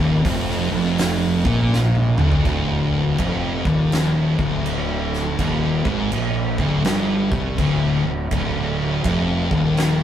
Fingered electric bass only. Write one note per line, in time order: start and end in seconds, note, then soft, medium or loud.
0.00 0.23 D#1 medium
0.25 0.68 F1 loud
0.72 1.41 F1 loud
1.45 2.15 A#1 medium
2.19 2.44 D1 medium
2.45 3.15 D1 loud
3.19 3.62 F1 loud
3.65 4.35 D#1 medium
4.39 5.35 D1 medium
5.39 5.82 D#1 medium
5.85 6.10 G#1 medium
6.12 6.55 A#1 loud
6.59 6.83 D1 loud
6.86 7.29 G1 loud
7.32 7.57 C2 medium
7.58 8.02 D1 medium
8.05 8.30 D1 medium
8.31 9.01 D1 loud
9.05 9.48 F1 medium
9.51 10.03 D#1 loud